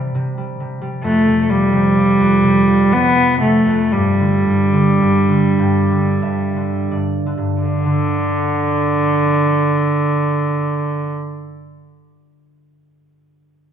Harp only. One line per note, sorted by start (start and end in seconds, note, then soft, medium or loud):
0.00 0.14 C3 soft
0.00 0.36 G3 soft
0.15 0.59 C3 soft
0.38 0.80 G3 soft
0.60 1.10 C3 soft
0.82 1.10 G3 soft
1.04 2.19 F2 medium
1.27 1.72 C3 soft
1.50 1.78 F3 soft
1.73 2.42 C3 soft
1.97 2.49 F3 soft
2.20 3.64 F2 soft
2.43 2.90 C3 soft
2.67 2.97 F3 soft
2.92 3.40 C3 soft
3.16 3.46 F3 soft
3.41 3.98 C3 soft
3.66 3.98 F2 soft
3.93 4.44 G2 soft
4.20 4.72 D3 soft
4.46 4.99 G2 soft
4.73 5.28 D3 soft
5.00 5.58 G2 soft
5.29 5.89 D3 soft
5.59 6.21 G2 soft
5.59 7.15 G5 soft
5.91 6.55 D3 soft
6.22 6.90 G2 soft
6.22 7.95 E5 soft
6.56 7.25 D3 soft
6.91 7.36 G2 soft
6.91 8.76 D5 soft
7.26 7.67 D3 soft
7.38 11.28 G2 soft
7.85 11.75 D3 soft